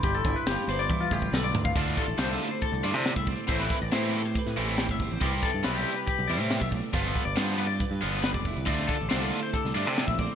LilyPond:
<<
  \new Staff \with { instrumentName = "Glockenspiel" } { \time 4/4 \key d \dorian \tempo 4 = 139 b''2. r4 | r1 | r1 | r1 |
r1 | r1 | }
  \new Staff \with { instrumentName = "Clean electric guitar" } { \time 4/4 \key d \dorian g'16 a'8 b'16 g'8 c''16 d''8 f'16 g'8 a'16 d''8 f''16 | d''8 a'8 c''16 a'8 c''16 a'8 d''16 c''8 e''16 d''8 | c''16 b'8 d''16 c''8 a'16 c''8 b'16 a'8 c''16 e''8 c''16 | d''8 a'8 b'16 g'8 b'16 g'8 d''16 c''8 e''16 d''8 |
b'16 a'8 d''16 c''8 b'16 d''8 b'16 a'8 b'16 d''8 b'16 | d''8 a'8 c''16 a'8 c''16 a'8 d''16 c''8 e''16 d''8 | }
  \new Staff \with { instrumentName = "Clean electric guitar" } { \time 4/4 \key d \dorian << { r8 e'8 f'8 b'8 e'8 f'8 b'4 | e'8 g'8 e'4 g'8 e'4 c'8 | e'16 g'16 b'8 g'4 b'8 g'4 c'8 | <g e' g' b'>8 b'8 g'4 b'8 e'16 g'4~ g'16 |
f'8 b'8 f'4 b'8 f'4 e'8 | e'8 g'8 e'4 g'8 e'4 c'8 | } \\ { <g, g>4. g4 d4. | d4. a4. a,4 | a,4. a4. e4 | c4. g4. b,8 a,8 |
g,4. g4. d4 | d4. a4. a,4 | } >> }
  \new Staff \with { instrumentName = "Overdriven electric guitar" } { \time 4/4 \key d \dorian r1 | <d a d' f'>8 r8 <d a d' f'>8 r4 <d a d' f'>8 r4 | <e a c' e'>8 r8 <e a c' e'>8 r4 <e a c' e'>8 r4 | <c g c' e'>8 r8 <c g c' e'>8 r4 <c g c' e'>8 r4 |
<d f b f'>8 r8 <d f b f'>8 r4 <d f b f'>8 r4 | <d a d' f'>8 r8 <d a d' f'>8 r4 <d a d' f'>8 r4 | }
  \new Staff \with { instrumentName = "Fingered electric bass" } { \clef bass \time 4/4 \key d \dorian g,,8 g,,16 r16 g,,16 r16 g,,8 r8 a,,8 b,,8 d,8 | d,8 r16 a,,16 c,8 r8. c,16 g,16 c8 c,8 r16 | a,,8 r16 a,,16 a,4~ a,16 a,16 a,,8. g,,8 a,,16 | c,8 r16 g,16 b,,8 r8. b,,16 e,16 a,8 b,,8 r16 |
g,,8 r16 g,,16 g,4~ g,16 g,16 g,,8. f,,8 c,16 | d,8 r16 a,,16 c,8 r8. c,16 g,16 c8 bes,,8 r16 | }
  \new DrumStaff \with { instrumentName = "Drums" } \drummode { \time 4/4 <hh bd>16 hh16 <hh bd>16 hh16 <hh sn>16 hh16 hh16 hh16 <bd tommh>8 bd16 bd16 sn8 tomfh16 bd16 | <hh bd>16 hh16 <hh bd>16 hh16 <hh sn>16 hh16 hho16 hh16 <hh bd>16 hh16 hh16 hh16 <hh sn>16 bd16 <hho bd>16 hh16 | <hh bd>16 <hh sn>16 <hh bd>16 hh16 <hh sn>16 hh16 hh16 hh16 <hh bd>16 <hh sn>16 hh16 sn16 <hh sn>16 bd16 <hho bd>16 hh16 | <hh bd>16 hh16 <hh bd>16 hh16 <hh sn>16 hh16 hho16 hh16 <hh bd>16 hh16 hh16 hh16 <hh sn>16 bd16 <hho bd>16 hh16 |
<hh bd>16 <hh sn>16 <hh bd>16 hh16 <hh sn>16 <hh sn>16 hh16 hh16 <hh bd>16 hh16 hh8 <hh sn>16 bd16 <hho bd>16 hh16 | <hh bd>16 <hh sn>16 <hh bd>16 hh16 <hh sn>16 <hh sn>16 hho16 hh16 <hh bd>16 <hh sn>16 hh16 hh16 <hh sn>16 bd16 <hho bd>16 hh16 | }
>>